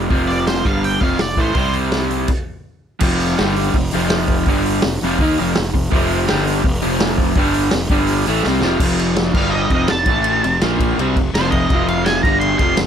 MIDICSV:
0, 0, Header, 1, 5, 480
1, 0, Start_track
1, 0, Key_signature, -1, "major"
1, 0, Tempo, 365186
1, 131, Time_signature, 4, 2, 24, 8
1, 4930, Tempo, 361011
1, 17050, End_track
2, 0, Start_track
2, 0, Title_t, "Lead electric guitar"
2, 0, Program_c, 0, 29
2, 358, Note_on_c, 0, 74, 88
2, 612, Note_off_c, 0, 74, 0
2, 617, Note_on_c, 0, 72, 81
2, 860, Note_on_c, 0, 77, 95
2, 864, Note_off_c, 0, 72, 0
2, 1106, Note_off_c, 0, 77, 0
2, 1114, Note_on_c, 0, 79, 96
2, 1321, Note_off_c, 0, 79, 0
2, 1321, Note_on_c, 0, 77, 97
2, 1592, Note_off_c, 0, 77, 0
2, 1592, Note_on_c, 0, 74, 81
2, 1825, Note_off_c, 0, 74, 0
2, 1854, Note_on_c, 0, 72, 79
2, 2284, Note_off_c, 0, 72, 0
2, 12370, Note_on_c, 0, 77, 94
2, 12589, Note_off_c, 0, 77, 0
2, 12594, Note_on_c, 0, 75, 96
2, 12836, Note_off_c, 0, 75, 0
2, 12863, Note_on_c, 0, 75, 75
2, 13077, Note_on_c, 0, 81, 90
2, 13091, Note_off_c, 0, 75, 0
2, 14016, Note_off_c, 0, 81, 0
2, 15025, Note_on_c, 0, 72, 91
2, 15240, Note_off_c, 0, 72, 0
2, 15245, Note_on_c, 0, 75, 94
2, 15715, Note_off_c, 0, 75, 0
2, 15753, Note_on_c, 0, 77, 91
2, 15960, Note_on_c, 0, 80, 80
2, 15976, Note_off_c, 0, 77, 0
2, 16199, Note_off_c, 0, 80, 0
2, 16204, Note_on_c, 0, 82, 97
2, 16424, Note_off_c, 0, 82, 0
2, 16429, Note_on_c, 0, 84, 92
2, 16661, Note_off_c, 0, 84, 0
2, 16677, Note_on_c, 0, 84, 94
2, 16917, Note_off_c, 0, 84, 0
2, 17050, End_track
3, 0, Start_track
3, 0, Title_t, "Overdriven electric guitar"
3, 0, Program_c, 1, 29
3, 129, Note_on_c, 1, 41, 97
3, 135, Note_on_c, 1, 48, 95
3, 141, Note_on_c, 1, 53, 103
3, 846, Note_off_c, 1, 41, 0
3, 850, Note_off_c, 1, 48, 0
3, 852, Note_off_c, 1, 53, 0
3, 860, Note_on_c, 1, 43, 89
3, 873, Note_on_c, 1, 50, 85
3, 886, Note_on_c, 1, 55, 95
3, 1321, Note_off_c, 1, 43, 0
3, 1327, Note_on_c, 1, 41, 92
3, 1338, Note_off_c, 1, 50, 0
3, 1345, Note_off_c, 1, 55, 0
3, 1352, Note_on_c, 1, 48, 89
3, 1365, Note_on_c, 1, 53, 99
3, 1558, Note_off_c, 1, 48, 0
3, 1565, Note_off_c, 1, 41, 0
3, 1574, Note_on_c, 1, 48, 67
3, 1584, Note_off_c, 1, 53, 0
3, 1584, Note_on_c, 1, 41, 66
3, 1768, Note_off_c, 1, 48, 0
3, 1773, Note_off_c, 1, 41, 0
3, 1812, Note_on_c, 1, 45, 108
3, 1823, Note_on_c, 1, 52, 111
3, 1828, Note_on_c, 1, 57, 117
3, 2060, Note_off_c, 1, 52, 0
3, 2060, Note_on_c, 1, 55, 94
3, 2061, Note_off_c, 1, 45, 0
3, 2061, Note_on_c, 1, 48, 92
3, 2076, Note_off_c, 1, 57, 0
3, 2076, Note_on_c, 1, 60, 99
3, 3012, Note_off_c, 1, 55, 0
3, 3013, Note_off_c, 1, 48, 0
3, 3020, Note_off_c, 1, 60, 0
3, 3950, Note_on_c, 1, 41, 91
3, 3983, Note_on_c, 1, 48, 90
3, 3985, Note_on_c, 1, 53, 95
3, 4433, Note_off_c, 1, 41, 0
3, 4441, Note_on_c, 1, 43, 95
3, 4450, Note_off_c, 1, 48, 0
3, 4451, Note_off_c, 1, 53, 0
3, 4469, Note_on_c, 1, 50, 95
3, 4474, Note_on_c, 1, 55, 98
3, 4917, Note_off_c, 1, 43, 0
3, 4930, Note_on_c, 1, 41, 59
3, 4931, Note_off_c, 1, 50, 0
3, 4933, Note_off_c, 1, 55, 0
3, 4946, Note_on_c, 1, 48, 69
3, 5123, Note_off_c, 1, 41, 0
3, 5131, Note_off_c, 1, 48, 0
3, 5166, Note_on_c, 1, 41, 96
3, 5179, Note_on_c, 1, 48, 87
3, 5188, Note_on_c, 1, 53, 104
3, 5883, Note_off_c, 1, 41, 0
3, 5890, Note_off_c, 1, 48, 0
3, 5894, Note_off_c, 1, 53, 0
3, 5899, Note_on_c, 1, 43, 94
3, 5909, Note_on_c, 1, 50, 96
3, 5924, Note_on_c, 1, 55, 93
3, 6369, Note_off_c, 1, 43, 0
3, 6374, Note_off_c, 1, 50, 0
3, 6382, Note_off_c, 1, 55, 0
3, 6384, Note_on_c, 1, 48, 74
3, 6385, Note_on_c, 1, 41, 66
3, 6571, Note_off_c, 1, 41, 0
3, 6571, Note_off_c, 1, 48, 0
3, 6632, Note_on_c, 1, 41, 92
3, 6652, Note_on_c, 1, 48, 95
3, 6667, Note_on_c, 1, 53, 107
3, 6856, Note_off_c, 1, 41, 0
3, 6859, Note_off_c, 1, 48, 0
3, 6865, Note_on_c, 1, 51, 84
3, 6866, Note_off_c, 1, 53, 0
3, 6871, Note_on_c, 1, 58, 88
3, 6887, Note_on_c, 1, 63, 103
3, 7092, Note_off_c, 1, 51, 0
3, 7095, Note_off_c, 1, 58, 0
3, 7103, Note_off_c, 1, 63, 0
3, 7105, Note_on_c, 1, 41, 103
3, 7112, Note_on_c, 1, 48, 90
3, 7119, Note_on_c, 1, 53, 106
3, 7317, Note_off_c, 1, 41, 0
3, 7332, Note_off_c, 1, 48, 0
3, 7333, Note_on_c, 1, 41, 72
3, 7340, Note_off_c, 1, 53, 0
3, 7348, Note_on_c, 1, 48, 73
3, 7526, Note_off_c, 1, 41, 0
3, 7533, Note_off_c, 1, 48, 0
3, 7570, Note_on_c, 1, 41, 80
3, 7578, Note_on_c, 1, 48, 84
3, 7764, Note_off_c, 1, 41, 0
3, 7768, Note_off_c, 1, 48, 0
3, 7797, Note_on_c, 1, 41, 92
3, 7815, Note_on_c, 1, 48, 92
3, 7833, Note_on_c, 1, 53, 97
3, 8268, Note_off_c, 1, 41, 0
3, 8274, Note_on_c, 1, 43, 91
3, 8284, Note_off_c, 1, 48, 0
3, 8289, Note_on_c, 1, 50, 91
3, 8296, Note_off_c, 1, 53, 0
3, 8311, Note_on_c, 1, 55, 99
3, 8754, Note_off_c, 1, 43, 0
3, 8759, Note_on_c, 1, 41, 56
3, 8764, Note_off_c, 1, 50, 0
3, 8775, Note_off_c, 1, 55, 0
3, 8776, Note_on_c, 1, 48, 67
3, 8958, Note_off_c, 1, 41, 0
3, 8966, Note_off_c, 1, 48, 0
3, 9008, Note_on_c, 1, 41, 91
3, 9016, Note_on_c, 1, 48, 101
3, 9025, Note_on_c, 1, 53, 110
3, 9723, Note_off_c, 1, 41, 0
3, 9727, Note_off_c, 1, 48, 0
3, 9731, Note_off_c, 1, 53, 0
3, 9738, Note_on_c, 1, 43, 102
3, 9754, Note_on_c, 1, 50, 88
3, 9769, Note_on_c, 1, 55, 97
3, 10208, Note_off_c, 1, 43, 0
3, 10216, Note_off_c, 1, 50, 0
3, 10216, Note_on_c, 1, 41, 68
3, 10223, Note_off_c, 1, 55, 0
3, 10233, Note_on_c, 1, 48, 69
3, 10406, Note_off_c, 1, 41, 0
3, 10414, Note_off_c, 1, 48, 0
3, 10449, Note_on_c, 1, 43, 85
3, 10464, Note_on_c, 1, 50, 105
3, 10473, Note_on_c, 1, 55, 93
3, 10923, Note_off_c, 1, 43, 0
3, 10930, Note_off_c, 1, 50, 0
3, 10935, Note_off_c, 1, 55, 0
3, 10937, Note_on_c, 1, 45, 91
3, 10946, Note_on_c, 1, 52, 88
3, 10964, Note_on_c, 1, 57, 106
3, 11167, Note_off_c, 1, 45, 0
3, 11171, Note_off_c, 1, 52, 0
3, 11181, Note_off_c, 1, 57, 0
3, 11209, Note_on_c, 1, 55, 94
3, 11211, Note_on_c, 1, 48, 93
3, 11226, Note_on_c, 1, 60, 106
3, 11418, Note_on_c, 1, 41, 110
3, 11423, Note_off_c, 1, 55, 0
3, 11424, Note_off_c, 1, 48, 0
3, 11432, Note_off_c, 1, 60, 0
3, 11440, Note_on_c, 1, 48, 111
3, 11445, Note_on_c, 1, 53, 119
3, 11648, Note_off_c, 1, 41, 0
3, 11659, Note_off_c, 1, 48, 0
3, 11661, Note_off_c, 1, 53, 0
3, 11668, Note_on_c, 1, 41, 81
3, 11691, Note_on_c, 1, 48, 94
3, 11697, Note_on_c, 1, 53, 96
3, 12373, Note_off_c, 1, 41, 0
3, 12384, Note_off_c, 1, 48, 0
3, 12387, Note_off_c, 1, 53, 0
3, 12390, Note_on_c, 1, 43, 82
3, 12405, Note_on_c, 1, 50, 84
3, 12418, Note_on_c, 1, 55, 88
3, 12854, Note_off_c, 1, 43, 0
3, 12861, Note_off_c, 1, 50, 0
3, 12863, Note_on_c, 1, 41, 90
3, 12868, Note_off_c, 1, 55, 0
3, 12893, Note_on_c, 1, 48, 91
3, 12900, Note_on_c, 1, 53, 99
3, 13090, Note_off_c, 1, 41, 0
3, 13105, Note_off_c, 1, 48, 0
3, 13109, Note_off_c, 1, 53, 0
3, 13119, Note_on_c, 1, 41, 58
3, 13121, Note_on_c, 1, 48, 78
3, 13298, Note_off_c, 1, 41, 0
3, 13299, Note_off_c, 1, 48, 0
3, 13332, Note_on_c, 1, 45, 99
3, 13349, Note_on_c, 1, 52, 102
3, 13361, Note_on_c, 1, 57, 116
3, 13805, Note_off_c, 1, 45, 0
3, 13814, Note_off_c, 1, 52, 0
3, 13820, Note_off_c, 1, 57, 0
3, 13831, Note_on_c, 1, 41, 69
3, 13831, Note_on_c, 1, 48, 85
3, 14014, Note_off_c, 1, 41, 0
3, 14014, Note_off_c, 1, 48, 0
3, 14064, Note_on_c, 1, 46, 83
3, 14068, Note_on_c, 1, 53, 99
3, 14088, Note_on_c, 1, 58, 98
3, 14532, Note_off_c, 1, 46, 0
3, 14534, Note_off_c, 1, 53, 0
3, 14543, Note_off_c, 1, 58, 0
3, 14545, Note_on_c, 1, 48, 78
3, 14567, Note_on_c, 1, 55, 93
3, 14587, Note_on_c, 1, 60, 91
3, 14772, Note_off_c, 1, 48, 0
3, 14783, Note_off_c, 1, 55, 0
3, 14793, Note_off_c, 1, 60, 0
3, 14805, Note_on_c, 1, 41, 74
3, 14815, Note_on_c, 1, 48, 78
3, 14981, Note_off_c, 1, 41, 0
3, 14986, Note_off_c, 1, 48, 0
3, 15060, Note_on_c, 1, 41, 88
3, 15065, Note_on_c, 1, 48, 101
3, 15083, Note_on_c, 1, 53, 100
3, 15510, Note_off_c, 1, 41, 0
3, 15512, Note_off_c, 1, 48, 0
3, 15521, Note_off_c, 1, 53, 0
3, 15531, Note_on_c, 1, 41, 94
3, 15544, Note_on_c, 1, 48, 97
3, 15552, Note_on_c, 1, 53, 99
3, 16225, Note_off_c, 1, 41, 0
3, 16232, Note_off_c, 1, 48, 0
3, 16233, Note_on_c, 1, 43, 87
3, 16235, Note_off_c, 1, 53, 0
3, 16251, Note_on_c, 1, 50, 96
3, 16257, Note_on_c, 1, 55, 94
3, 16693, Note_off_c, 1, 43, 0
3, 16698, Note_on_c, 1, 41, 91
3, 16705, Note_off_c, 1, 50, 0
3, 16708, Note_off_c, 1, 55, 0
3, 16711, Note_on_c, 1, 48, 102
3, 16726, Note_on_c, 1, 53, 108
3, 16928, Note_off_c, 1, 41, 0
3, 16934, Note_off_c, 1, 48, 0
3, 16942, Note_off_c, 1, 53, 0
3, 16948, Note_on_c, 1, 41, 62
3, 16955, Note_on_c, 1, 48, 75
3, 17050, Note_off_c, 1, 41, 0
3, 17050, Note_off_c, 1, 48, 0
3, 17050, End_track
4, 0, Start_track
4, 0, Title_t, "Fingered electric bass"
4, 0, Program_c, 2, 33
4, 154, Note_on_c, 2, 29, 95
4, 816, Note_off_c, 2, 29, 0
4, 862, Note_on_c, 2, 31, 93
4, 1307, Note_off_c, 2, 31, 0
4, 1335, Note_on_c, 2, 29, 93
4, 1559, Note_off_c, 2, 29, 0
4, 1567, Note_on_c, 2, 29, 82
4, 1796, Note_off_c, 2, 29, 0
4, 1803, Note_on_c, 2, 33, 88
4, 2034, Note_off_c, 2, 33, 0
4, 2044, Note_on_c, 2, 36, 89
4, 2959, Note_off_c, 2, 36, 0
4, 3965, Note_on_c, 2, 29, 93
4, 4414, Note_off_c, 2, 29, 0
4, 4456, Note_on_c, 2, 31, 102
4, 4898, Note_off_c, 2, 31, 0
4, 4920, Note_on_c, 2, 29, 81
4, 5149, Note_off_c, 2, 29, 0
4, 5183, Note_on_c, 2, 29, 97
4, 5849, Note_off_c, 2, 29, 0
4, 5890, Note_on_c, 2, 31, 91
4, 6338, Note_off_c, 2, 31, 0
4, 6376, Note_on_c, 2, 29, 88
4, 6598, Note_off_c, 2, 29, 0
4, 6617, Note_on_c, 2, 29, 85
4, 6839, Note_off_c, 2, 29, 0
4, 6844, Note_on_c, 2, 39, 100
4, 7072, Note_off_c, 2, 39, 0
4, 7112, Note_on_c, 2, 29, 98
4, 7327, Note_off_c, 2, 29, 0
4, 7353, Note_on_c, 2, 29, 77
4, 7567, Note_off_c, 2, 29, 0
4, 7580, Note_on_c, 2, 29, 79
4, 7801, Note_off_c, 2, 29, 0
4, 7818, Note_on_c, 2, 29, 99
4, 8262, Note_off_c, 2, 29, 0
4, 8329, Note_on_c, 2, 31, 105
4, 8758, Note_off_c, 2, 31, 0
4, 8790, Note_on_c, 2, 29, 87
4, 9005, Note_off_c, 2, 29, 0
4, 9039, Note_on_c, 2, 29, 105
4, 9696, Note_off_c, 2, 29, 0
4, 9734, Note_on_c, 2, 31, 85
4, 10179, Note_off_c, 2, 31, 0
4, 10219, Note_on_c, 2, 29, 89
4, 10439, Note_off_c, 2, 29, 0
4, 10451, Note_on_c, 2, 31, 90
4, 10898, Note_off_c, 2, 31, 0
4, 10947, Note_on_c, 2, 33, 95
4, 11163, Note_off_c, 2, 33, 0
4, 11182, Note_on_c, 2, 36, 93
4, 11400, Note_off_c, 2, 36, 0
4, 11406, Note_on_c, 2, 29, 88
4, 11632, Note_off_c, 2, 29, 0
4, 11647, Note_on_c, 2, 29, 92
4, 12319, Note_off_c, 2, 29, 0
4, 12369, Note_on_c, 2, 31, 88
4, 12817, Note_off_c, 2, 31, 0
4, 12845, Note_on_c, 2, 29, 100
4, 13072, Note_off_c, 2, 29, 0
4, 13107, Note_on_c, 2, 29, 82
4, 13316, Note_off_c, 2, 29, 0
4, 13324, Note_on_c, 2, 33, 91
4, 13775, Note_off_c, 2, 33, 0
4, 13823, Note_on_c, 2, 29, 75
4, 14042, Note_off_c, 2, 29, 0
4, 14066, Note_on_c, 2, 34, 109
4, 14507, Note_off_c, 2, 34, 0
4, 14538, Note_on_c, 2, 36, 97
4, 14759, Note_off_c, 2, 36, 0
4, 14795, Note_on_c, 2, 29, 82
4, 15008, Note_off_c, 2, 29, 0
4, 15017, Note_on_c, 2, 29, 103
4, 15462, Note_off_c, 2, 29, 0
4, 15504, Note_on_c, 2, 29, 103
4, 16169, Note_off_c, 2, 29, 0
4, 16218, Note_on_c, 2, 31, 92
4, 16662, Note_off_c, 2, 31, 0
4, 16694, Note_on_c, 2, 29, 97
4, 16917, Note_off_c, 2, 29, 0
4, 16947, Note_on_c, 2, 29, 85
4, 17050, Note_off_c, 2, 29, 0
4, 17050, End_track
5, 0, Start_track
5, 0, Title_t, "Drums"
5, 136, Note_on_c, 9, 46, 70
5, 138, Note_on_c, 9, 36, 112
5, 268, Note_off_c, 9, 46, 0
5, 270, Note_off_c, 9, 36, 0
5, 398, Note_on_c, 9, 46, 51
5, 529, Note_off_c, 9, 46, 0
5, 620, Note_on_c, 9, 46, 69
5, 623, Note_on_c, 9, 38, 106
5, 751, Note_off_c, 9, 46, 0
5, 754, Note_off_c, 9, 38, 0
5, 858, Note_on_c, 9, 36, 108
5, 865, Note_on_c, 9, 46, 50
5, 989, Note_off_c, 9, 36, 0
5, 997, Note_off_c, 9, 46, 0
5, 1105, Note_on_c, 9, 46, 69
5, 1236, Note_off_c, 9, 46, 0
5, 1331, Note_on_c, 9, 36, 107
5, 1336, Note_on_c, 9, 46, 53
5, 1463, Note_off_c, 9, 36, 0
5, 1468, Note_off_c, 9, 46, 0
5, 1563, Note_on_c, 9, 46, 80
5, 1565, Note_on_c, 9, 38, 110
5, 1694, Note_off_c, 9, 46, 0
5, 1697, Note_off_c, 9, 38, 0
5, 1801, Note_on_c, 9, 36, 101
5, 1801, Note_on_c, 9, 46, 61
5, 1932, Note_off_c, 9, 36, 0
5, 1932, Note_off_c, 9, 46, 0
5, 2033, Note_on_c, 9, 46, 72
5, 2042, Note_on_c, 9, 36, 106
5, 2164, Note_off_c, 9, 46, 0
5, 2174, Note_off_c, 9, 36, 0
5, 2281, Note_on_c, 9, 46, 56
5, 2413, Note_off_c, 9, 46, 0
5, 2520, Note_on_c, 9, 46, 70
5, 2522, Note_on_c, 9, 38, 103
5, 2651, Note_off_c, 9, 46, 0
5, 2654, Note_off_c, 9, 38, 0
5, 2768, Note_on_c, 9, 46, 63
5, 2900, Note_off_c, 9, 46, 0
5, 2997, Note_on_c, 9, 49, 91
5, 3003, Note_on_c, 9, 36, 104
5, 3128, Note_off_c, 9, 49, 0
5, 3135, Note_off_c, 9, 36, 0
5, 3949, Note_on_c, 9, 49, 114
5, 3961, Note_on_c, 9, 36, 110
5, 4081, Note_off_c, 9, 49, 0
5, 4092, Note_off_c, 9, 36, 0
5, 4206, Note_on_c, 9, 46, 55
5, 4337, Note_off_c, 9, 46, 0
5, 4449, Note_on_c, 9, 46, 70
5, 4452, Note_on_c, 9, 38, 114
5, 4581, Note_off_c, 9, 46, 0
5, 4583, Note_off_c, 9, 38, 0
5, 4682, Note_on_c, 9, 46, 65
5, 4813, Note_off_c, 9, 46, 0
5, 4912, Note_on_c, 9, 46, 80
5, 4916, Note_on_c, 9, 36, 85
5, 5045, Note_off_c, 9, 46, 0
5, 5049, Note_off_c, 9, 36, 0
5, 5141, Note_on_c, 9, 46, 65
5, 5274, Note_off_c, 9, 46, 0
5, 5395, Note_on_c, 9, 38, 118
5, 5528, Note_off_c, 9, 38, 0
5, 5629, Note_on_c, 9, 46, 68
5, 5638, Note_on_c, 9, 36, 86
5, 5762, Note_off_c, 9, 46, 0
5, 5771, Note_off_c, 9, 36, 0
5, 5870, Note_on_c, 9, 46, 83
5, 5881, Note_on_c, 9, 36, 102
5, 6003, Note_off_c, 9, 46, 0
5, 6014, Note_off_c, 9, 36, 0
5, 6134, Note_on_c, 9, 46, 62
5, 6267, Note_off_c, 9, 46, 0
5, 6353, Note_on_c, 9, 46, 84
5, 6355, Note_on_c, 9, 38, 115
5, 6486, Note_off_c, 9, 46, 0
5, 6488, Note_off_c, 9, 38, 0
5, 6607, Note_on_c, 9, 46, 63
5, 6739, Note_off_c, 9, 46, 0
5, 6830, Note_on_c, 9, 46, 81
5, 6843, Note_on_c, 9, 36, 88
5, 6963, Note_off_c, 9, 46, 0
5, 6976, Note_off_c, 9, 36, 0
5, 7087, Note_on_c, 9, 46, 59
5, 7220, Note_off_c, 9, 46, 0
5, 7329, Note_on_c, 9, 38, 116
5, 7461, Note_off_c, 9, 38, 0
5, 7576, Note_on_c, 9, 36, 83
5, 7584, Note_on_c, 9, 46, 65
5, 7709, Note_off_c, 9, 36, 0
5, 7717, Note_off_c, 9, 46, 0
5, 7818, Note_on_c, 9, 36, 119
5, 7828, Note_on_c, 9, 46, 77
5, 7951, Note_off_c, 9, 36, 0
5, 7960, Note_off_c, 9, 46, 0
5, 8065, Note_on_c, 9, 46, 59
5, 8198, Note_off_c, 9, 46, 0
5, 8297, Note_on_c, 9, 46, 78
5, 8300, Note_on_c, 9, 38, 116
5, 8430, Note_off_c, 9, 46, 0
5, 8433, Note_off_c, 9, 38, 0
5, 8546, Note_on_c, 9, 46, 62
5, 8679, Note_off_c, 9, 46, 0
5, 8775, Note_on_c, 9, 36, 90
5, 8776, Note_on_c, 9, 46, 78
5, 8908, Note_off_c, 9, 36, 0
5, 8909, Note_off_c, 9, 46, 0
5, 9009, Note_on_c, 9, 46, 60
5, 9142, Note_off_c, 9, 46, 0
5, 9253, Note_on_c, 9, 46, 81
5, 9255, Note_on_c, 9, 38, 127
5, 9386, Note_off_c, 9, 46, 0
5, 9388, Note_off_c, 9, 38, 0
5, 9493, Note_on_c, 9, 36, 95
5, 9495, Note_on_c, 9, 46, 59
5, 9626, Note_off_c, 9, 36, 0
5, 9628, Note_off_c, 9, 46, 0
5, 9718, Note_on_c, 9, 46, 83
5, 9727, Note_on_c, 9, 36, 118
5, 9851, Note_off_c, 9, 46, 0
5, 9860, Note_off_c, 9, 36, 0
5, 9965, Note_on_c, 9, 46, 60
5, 10098, Note_off_c, 9, 46, 0
5, 10194, Note_on_c, 9, 46, 89
5, 10197, Note_on_c, 9, 38, 109
5, 10327, Note_off_c, 9, 46, 0
5, 10330, Note_off_c, 9, 38, 0
5, 10436, Note_on_c, 9, 46, 64
5, 10445, Note_on_c, 9, 36, 103
5, 10569, Note_off_c, 9, 46, 0
5, 10578, Note_off_c, 9, 36, 0
5, 10670, Note_on_c, 9, 46, 80
5, 10803, Note_off_c, 9, 46, 0
5, 10918, Note_on_c, 9, 46, 61
5, 11051, Note_off_c, 9, 46, 0
5, 11155, Note_on_c, 9, 38, 61
5, 11288, Note_off_c, 9, 38, 0
5, 11397, Note_on_c, 9, 38, 92
5, 11530, Note_off_c, 9, 38, 0
5, 11641, Note_on_c, 9, 36, 113
5, 11645, Note_on_c, 9, 49, 127
5, 11774, Note_off_c, 9, 36, 0
5, 11778, Note_off_c, 9, 49, 0
5, 11901, Note_on_c, 9, 51, 64
5, 12034, Note_off_c, 9, 51, 0
5, 12127, Note_on_c, 9, 51, 87
5, 12130, Note_on_c, 9, 38, 106
5, 12260, Note_off_c, 9, 51, 0
5, 12263, Note_off_c, 9, 38, 0
5, 12363, Note_on_c, 9, 36, 113
5, 12367, Note_on_c, 9, 57, 106
5, 12496, Note_off_c, 9, 36, 0
5, 12500, Note_off_c, 9, 57, 0
5, 12844, Note_on_c, 9, 36, 87
5, 12844, Note_on_c, 9, 51, 65
5, 12977, Note_off_c, 9, 36, 0
5, 12977, Note_off_c, 9, 51, 0
5, 13077, Note_on_c, 9, 51, 101
5, 13080, Note_on_c, 9, 38, 110
5, 13210, Note_off_c, 9, 51, 0
5, 13213, Note_off_c, 9, 38, 0
5, 13315, Note_on_c, 9, 51, 78
5, 13319, Note_on_c, 9, 36, 101
5, 13448, Note_off_c, 9, 51, 0
5, 13452, Note_off_c, 9, 36, 0
5, 13558, Note_on_c, 9, 51, 109
5, 13691, Note_off_c, 9, 51, 0
5, 13824, Note_on_c, 9, 51, 73
5, 13957, Note_off_c, 9, 51, 0
5, 14056, Note_on_c, 9, 51, 100
5, 14058, Note_on_c, 9, 38, 105
5, 14189, Note_off_c, 9, 51, 0
5, 14191, Note_off_c, 9, 38, 0
5, 14298, Note_on_c, 9, 36, 92
5, 14307, Note_on_c, 9, 51, 87
5, 14431, Note_off_c, 9, 36, 0
5, 14440, Note_off_c, 9, 51, 0
5, 14557, Note_on_c, 9, 51, 100
5, 14690, Note_off_c, 9, 51, 0
5, 14785, Note_on_c, 9, 36, 92
5, 14787, Note_on_c, 9, 51, 71
5, 14918, Note_off_c, 9, 36, 0
5, 14920, Note_off_c, 9, 51, 0
5, 15033, Note_on_c, 9, 51, 106
5, 15035, Note_on_c, 9, 38, 117
5, 15166, Note_off_c, 9, 51, 0
5, 15168, Note_off_c, 9, 38, 0
5, 15260, Note_on_c, 9, 51, 72
5, 15264, Note_on_c, 9, 36, 87
5, 15393, Note_off_c, 9, 51, 0
5, 15397, Note_off_c, 9, 36, 0
5, 15500, Note_on_c, 9, 51, 89
5, 15502, Note_on_c, 9, 36, 123
5, 15633, Note_off_c, 9, 51, 0
5, 15635, Note_off_c, 9, 36, 0
5, 15744, Note_on_c, 9, 51, 65
5, 15877, Note_off_c, 9, 51, 0
5, 15975, Note_on_c, 9, 51, 96
5, 15978, Note_on_c, 9, 38, 102
5, 16108, Note_off_c, 9, 51, 0
5, 16111, Note_off_c, 9, 38, 0
5, 16214, Note_on_c, 9, 36, 111
5, 16226, Note_on_c, 9, 51, 68
5, 16347, Note_off_c, 9, 36, 0
5, 16359, Note_off_c, 9, 51, 0
5, 16447, Note_on_c, 9, 51, 91
5, 16580, Note_off_c, 9, 51, 0
5, 16684, Note_on_c, 9, 51, 71
5, 16689, Note_on_c, 9, 36, 89
5, 16817, Note_off_c, 9, 51, 0
5, 16822, Note_off_c, 9, 36, 0
5, 16922, Note_on_c, 9, 51, 103
5, 16925, Note_on_c, 9, 38, 118
5, 17050, Note_off_c, 9, 38, 0
5, 17050, Note_off_c, 9, 51, 0
5, 17050, End_track
0, 0, End_of_file